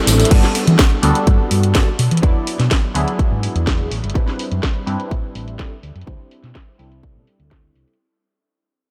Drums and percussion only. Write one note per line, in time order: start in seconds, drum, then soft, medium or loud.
0.07 open hi-hat loud
0.07 tambourine medium
0.20 closed hi-hat medium
0.20 tambourine soft
0.25 closed hi-hat medium
0.31 kick loud
0.31 closed hi-hat medium
0.31 crash medium
0.43 snare soft
0.55 open hi-hat loud
0.67 closed hi-hat medium
0.79 kick loud
0.79 snare loud
0.79 closed hi-hat medium
1.03 open hi-hat loud
1.15 closed hi-hat medium
1.27 kick loud
1.27 closed hi-hat medium
1.51 open hi-hat loud
1.63 closed hi-hat medium
1.75 kick loud
1.75 snare loud
1.75 closed hi-hat medium
1.99 open hi-hat loud
2.11 closed hi-hat soft
2.17 closed hi-hat medium
2.23 kick loud
2.23 closed hi-hat medium
2.47 open hi-hat loud
2.59 snare soft
2.59 closed hi-hat medium
2.71 kick loud
2.71 snare loud
2.71 closed hi-hat medium
2.95 open hi-hat loud
3.08 closed hi-hat soft
3.19 kick loud
3.19 closed hi-hat medium
3.43 open hi-hat loud
3.56 closed hi-hat medium
3.67 kick loud
3.67 snare loud
3.67 open hi-hat medium
3.92 open hi-hat loud
4.04 closed hi-hat soft
4.10 closed hi-hat medium
4.15 kick loud
4.15 closed hi-hat medium
4.28 snare soft
4.39 open hi-hat loud
4.52 closed hi-hat soft
4.63 kick loud
4.63 snare loud
4.63 closed hi-hat medium
4.87 open hi-hat loud
5.00 closed hi-hat soft
5.11 kick loud
5.11 closed hi-hat medium
5.35 open hi-hat loud
5.48 closed hi-hat soft
5.59 kick loud
5.59 snare loud
5.59 closed hi-hat medium
5.83 open hi-hat loud
5.96 closed hi-hat soft
6.01 closed hi-hat medium
6.07 kick loud
6.07 closed hi-hat medium
6.31 open hi-hat loud
6.44 snare soft
6.44 closed hi-hat soft
6.55 kick loud
6.55 snare loud
6.55 closed hi-hat medium
6.79 open hi-hat loud
6.92 closed hi-hat soft
7.03 kick loud
7.03 closed hi-hat medium
7.27 open hi-hat loud
7.40 closed hi-hat soft
7.51 kick loud
7.51 snare loud
7.51 open hi-hat medium
7.75 open hi-hat loud
7.88 closed hi-hat soft
7.94 closed hi-hat medium